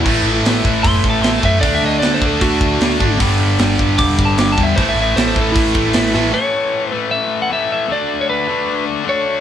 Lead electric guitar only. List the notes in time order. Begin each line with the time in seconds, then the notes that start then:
Already playing: E4
0.83 C6
1.10 A5
1.22 C6
1.33 A5
1.45 E5
1.61 D5
1.75 E5
1.86 D#5
1.99 D5
2.14 C5
2.27 A4
2.42 F#4
3.99 D6
4.25 A5
4.39 D6
4.52 A5
4.63 E5
4.76 C5
4.89 E5
5.02 E5
5.16 C5
5.27 C5
5.41 A4
5.52 E4
5.94 B4
6.34 C#5
6.93 B4
7.11 E5
7.42 F#5
7.53 E5
7.72 E5
7.92 D5
8.21 C#5
8.30 B4
9.09 C#5